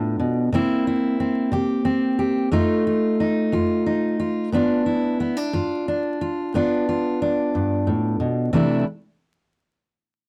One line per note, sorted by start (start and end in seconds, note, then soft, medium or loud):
0.00 0.19 A2 medium
0.00 0.49 B3 medium
0.00 0.48 D4 medium
0.00 0.49 F4 medium
0.20 0.52 B2 medium
0.53 1.13 C3 medium
0.53 2.50 A#3 medium
0.53 1.19 C4 medium
0.53 0.86 E4 medium
0.87 1.52 E4 medium
1.20 1.84 C4 medium
1.52 2.12 C3 medium
1.52 2.18 G4 medium
1.85 2.48 C4 medium
2.19 2.48 G4 medium
2.52 3.12 F2 medium
2.52 4.49 A3 medium
2.52 3.19 D#4 medium
2.52 2.86 F4 medium
2.87 3.52 F4 medium
3.20 3.85 D#4 medium
3.52 4.13 F2 medium
3.52 4.18 F4 medium
3.86 4.49 D#4 medium
4.20 4.49 F4 medium
4.52 5.13 G2 medium
4.52 5.19 B3 medium
4.52 5.20 D4 medium
4.52 4.86 F4 medium
4.86 5.53 E4 medium
5.20 5.37 B3 medium
5.37 5.87 D4 medium
5.53 6.13 G2 medium
5.53 6.20 F4 medium
5.88 6.54 D4 medium
6.21 6.54 F4 medium
6.54 7.14 G2 medium
6.54 8.50 B3 medium
6.54 7.21 D4 medium
6.54 6.88 F4 medium
6.89 8.50 F4 medium
7.22 8.50 D4 medium
7.55 7.87 G2 medium
7.87 8.19 A2 medium
8.20 8.52 B2 medium
8.53 8.83 C3 medium
8.53 8.83 E3 medium
8.53 8.84 A3 medium
8.53 8.84 D4 medium
8.53 8.84 E4 medium